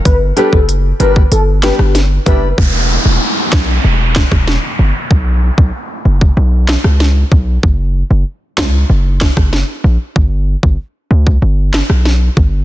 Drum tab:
HH |x-x-x-x-x-x-x-x-|----------------|----------------|----------------|
CP |----------x-----|------x---x-----|----------x-----|------x---x-----|
SD |----------oro---|------o---oro---|----------oro---|------o---oro---|
BD |o--o---o------o-|o-----o---oo----|o--o---o------o-|o-----o---oo----|

HH |----------------|
CP |----------x-----|
SD |----------oro---|
BD |o--o---o------o-|